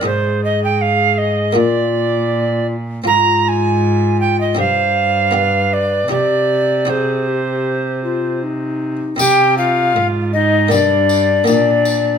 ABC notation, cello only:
X:1
M:4/4
L:1/16
Q:1/4=79
K:Cm
V:1 name="Cello" clef=bass
A,,8 B,,8 | A,,8 G,,8 | C,12- C,3 z | C,4 A,,4 G,,4 B,,4 |]